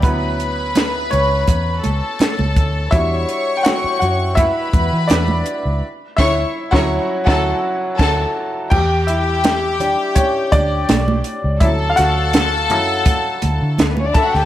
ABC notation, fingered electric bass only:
X:1
M:4/4
L:1/16
Q:1/4=83
K:D
V:1 name="Fingered electric bass" clef=bass
D,,6 C,,2 E,,2 C,, z2 C,, D,,2 | E,,2 z4 F,,3 z E,, E, E,,2 z C,, | z2 D,,2 z D,,2 z D,,2 z2 D,,2 z2 | E,,6- E,, z3 D,,2 B,,,2 z C,, |
D,,2 D,,4 F,,3 z D,, D, D,,2 z D,, |]